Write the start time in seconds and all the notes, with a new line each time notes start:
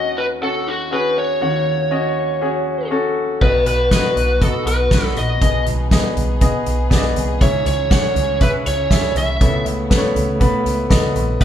Already playing: D#2 D#3 C#4 F#4 D#5
0.18 B4
0.41 C#4 F#4 A4 F#5
0.68 F#4
0.91 C#4 F#4 G#4 B4
1.18 C#5
1.41 D#2 D#3 C#4 F#4 F#5
1.91 C#4 F#4 D#5
2.41 C#4 F#4 G#4
2.91 C#4 F#4 A4
3.41 B1 B3 D#4 F#4 B4 D#5, kick, crash
3.66 B1 B4, closed hi-hat
3.91 B3 F#4 B4 D#5, kick, snare, closed hi-hat
4.16 B1, closed hi-hat
4.41 B3 F#4 A4 D#5, kick, closed hi-hat
4.66 B1 B4, closed hi-hat
4.91 B1 B3 F#4 B4, kick, snare, closed hi-hat
5.04 snare
5.16 A#1 D#5, closed hi-hat
5.41 B1 B2 B3 G#4 D#5, kick, closed hi-hat
5.66 B1, closed hi-hat, floor tom
5.91 B3 G#4 D#5, kick, snare, closed hi-hat
6.16 B1, closed hi-hat, floor tom
6.41 B3 G#4 D#5, kick, closed hi-hat
6.66 B1, closed hi-hat
6.90 B1 B3 G#4 D5, kick, snare, closed hi-hat
6.98 D#5
7.04 snare
7.16 C2, closed hi-hat, floor tom
7.41 C#2 G#2 C#3 C#4 E4 G#4 C#5 E5, kick, closed hi-hat
7.66 C#2 C#5, closed hi-hat, floor tom
7.90 C#4 G#4 C#5 F#5, kick, snare, closed hi-hat
8.16 C#2, closed hi-hat, floor tom
8.40 C#4 G#4 B4 E5, kick, closed hi-hat
8.66 C#2 C#5, closed hi-hat
8.90 C#2 C#4 G#4 E5, kick, snare, closed hi-hat
9.15 C2 E5, closed hi-hat, floor tom
9.41 C#2 C#3 A3 B3 A4 C#5, kick, closed hi-hat
9.66 C#2, closed hi-hat
9.90 B3 A4 B4, kick, snare, closed hi-hat
9.97 C#5
10.15 C#2, closed hi-hat, floor tom
10.40 B3 A4 B4, kick, closed hi-hat
10.66 C#2, closed hi-hat
10.90 C#2 B3 A4 D#5, kick, snare, closed hi-hat
11.15 A#1, closed hi-hat, floor tom
11.40 B1 F#3 B3 D#4 F#4, kick, closed hi-hat